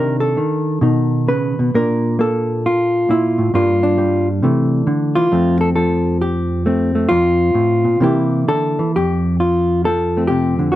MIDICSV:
0, 0, Header, 1, 2, 480
1, 0, Start_track
1, 0, Key_signature, -1, "major"
1, 0, Tempo, 456621
1, 1839, Time_signature, 4, 2, 24, 8
1, 2319, Tempo, 445104
1, 8079, Tempo, 465477
1, 9999, Tempo, 446097
1, 11447, End_track
2, 0, Start_track
2, 0, Title_t, "Hollow-body jazz guitar"
2, 0, Program_c, 0, 26
2, 0, Note_on_c, 0, 48, 73
2, 0, Note_on_c, 0, 51, 51
2, 0, Note_on_c, 0, 62, 49
2, 0, Note_on_c, 0, 70, 102
2, 210, Note_off_c, 0, 70, 0
2, 214, Note_on_c, 0, 69, 98
2, 378, Note_off_c, 0, 51, 0
2, 389, Note_off_c, 0, 48, 0
2, 391, Note_on_c, 0, 51, 62
2, 851, Note_off_c, 0, 62, 0
2, 854, Note_off_c, 0, 51, 0
2, 854, Note_on_c, 0, 47, 72
2, 867, Note_on_c, 0, 51, 46
2, 870, Note_on_c, 0, 63, 45
2, 1346, Note_on_c, 0, 49, 56
2, 1351, Note_on_c, 0, 71, 86
2, 1661, Note_off_c, 0, 47, 0
2, 1669, Note_off_c, 0, 49, 0
2, 1673, Note_on_c, 0, 47, 57
2, 1820, Note_off_c, 0, 63, 0
2, 1830, Note_off_c, 0, 47, 0
2, 1830, Note_off_c, 0, 69, 0
2, 1834, Note_on_c, 0, 46, 66
2, 1835, Note_off_c, 0, 51, 0
2, 1837, Note_off_c, 0, 71, 0
2, 1839, Note_on_c, 0, 58, 47
2, 1843, Note_on_c, 0, 70, 88
2, 1852, Note_on_c, 0, 62, 49
2, 2298, Note_off_c, 0, 58, 0
2, 2302, Note_on_c, 0, 58, 62
2, 2316, Note_off_c, 0, 70, 0
2, 2320, Note_on_c, 0, 69, 85
2, 2809, Note_on_c, 0, 65, 87
2, 3259, Note_off_c, 0, 46, 0
2, 3272, Note_on_c, 0, 46, 64
2, 3279, Note_off_c, 0, 69, 0
2, 3285, Note_off_c, 0, 62, 0
2, 3290, Note_on_c, 0, 64, 81
2, 3586, Note_on_c, 0, 45, 61
2, 3590, Note_off_c, 0, 46, 0
2, 3728, Note_off_c, 0, 58, 0
2, 3750, Note_off_c, 0, 45, 0
2, 3753, Note_off_c, 0, 65, 0
2, 3754, Note_on_c, 0, 43, 73
2, 3762, Note_off_c, 0, 64, 0
2, 3762, Note_on_c, 0, 55, 52
2, 3769, Note_on_c, 0, 58, 47
2, 3770, Note_on_c, 0, 65, 89
2, 3773, Note_on_c, 0, 62, 52
2, 4059, Note_off_c, 0, 62, 0
2, 4072, Note_on_c, 0, 62, 83
2, 4226, Note_off_c, 0, 55, 0
2, 4231, Note_on_c, 0, 55, 61
2, 4549, Note_off_c, 0, 65, 0
2, 4688, Note_off_c, 0, 43, 0
2, 4695, Note_off_c, 0, 58, 0
2, 4712, Note_on_c, 0, 48, 73
2, 4721, Note_off_c, 0, 55, 0
2, 4725, Note_on_c, 0, 52, 52
2, 4730, Note_on_c, 0, 57, 51
2, 5186, Note_off_c, 0, 48, 0
2, 5191, Note_on_c, 0, 50, 66
2, 5499, Note_on_c, 0, 65, 96
2, 5503, Note_off_c, 0, 50, 0
2, 5510, Note_off_c, 0, 52, 0
2, 5514, Note_on_c, 0, 52, 68
2, 5667, Note_off_c, 0, 62, 0
2, 5672, Note_off_c, 0, 52, 0
2, 5674, Note_on_c, 0, 41, 76
2, 5679, Note_on_c, 0, 53, 52
2, 5682, Note_off_c, 0, 57, 0
2, 5686, Note_on_c, 0, 57, 52
2, 5693, Note_on_c, 0, 60, 53
2, 5980, Note_off_c, 0, 65, 0
2, 5988, Note_on_c, 0, 69, 90
2, 6075, Note_off_c, 0, 69, 0
2, 6140, Note_off_c, 0, 53, 0
2, 6147, Note_on_c, 0, 69, 89
2, 6153, Note_on_c, 0, 53, 68
2, 6625, Note_off_c, 0, 69, 0
2, 6642, Note_on_c, 0, 67, 82
2, 7108, Note_off_c, 0, 57, 0
2, 7121, Note_on_c, 0, 57, 53
2, 7128, Note_off_c, 0, 60, 0
2, 7132, Note_on_c, 0, 60, 51
2, 7424, Note_off_c, 0, 57, 0
2, 7437, Note_on_c, 0, 57, 51
2, 7577, Note_off_c, 0, 67, 0
2, 7578, Note_off_c, 0, 53, 0
2, 7579, Note_off_c, 0, 57, 0
2, 7582, Note_on_c, 0, 65, 118
2, 7588, Note_off_c, 0, 41, 0
2, 7601, Note_on_c, 0, 41, 79
2, 8072, Note_off_c, 0, 41, 0
2, 8076, Note_on_c, 0, 45, 70
2, 8383, Note_off_c, 0, 45, 0
2, 8386, Note_on_c, 0, 46, 64
2, 8539, Note_off_c, 0, 65, 0
2, 8545, Note_off_c, 0, 46, 0
2, 8550, Note_on_c, 0, 48, 80
2, 8556, Note_off_c, 0, 60, 0
2, 8562, Note_on_c, 0, 52, 65
2, 8566, Note_on_c, 0, 58, 64
2, 8578, Note_on_c, 0, 64, 64
2, 8582, Note_on_c, 0, 67, 72
2, 9037, Note_off_c, 0, 48, 0
2, 9041, Note_on_c, 0, 50, 69
2, 9042, Note_off_c, 0, 67, 0
2, 9046, Note_on_c, 0, 69, 111
2, 9349, Note_off_c, 0, 52, 0
2, 9361, Note_on_c, 0, 52, 67
2, 9364, Note_off_c, 0, 50, 0
2, 9515, Note_off_c, 0, 58, 0
2, 9523, Note_off_c, 0, 64, 0
2, 9525, Note_off_c, 0, 52, 0
2, 9531, Note_off_c, 0, 69, 0
2, 9535, Note_on_c, 0, 67, 85
2, 9536, Note_on_c, 0, 41, 67
2, 9986, Note_off_c, 0, 67, 0
2, 9990, Note_on_c, 0, 65, 79
2, 10472, Note_off_c, 0, 65, 0
2, 10476, Note_on_c, 0, 69, 94
2, 10490, Note_on_c, 0, 53, 62
2, 10818, Note_on_c, 0, 57, 45
2, 10824, Note_on_c, 0, 60, 44
2, 10926, Note_off_c, 0, 69, 0
2, 10930, Note_on_c, 0, 67, 85
2, 10960, Note_on_c, 0, 48, 60
2, 11266, Note_off_c, 0, 48, 0
2, 11270, Note_on_c, 0, 50, 62
2, 11403, Note_off_c, 0, 67, 0
2, 11407, Note_on_c, 0, 66, 82
2, 11417, Note_off_c, 0, 53, 0
2, 11422, Note_off_c, 0, 57, 0
2, 11433, Note_off_c, 0, 60, 0
2, 11435, Note_off_c, 0, 50, 0
2, 11444, Note_off_c, 0, 41, 0
2, 11447, Note_off_c, 0, 66, 0
2, 11447, End_track
0, 0, End_of_file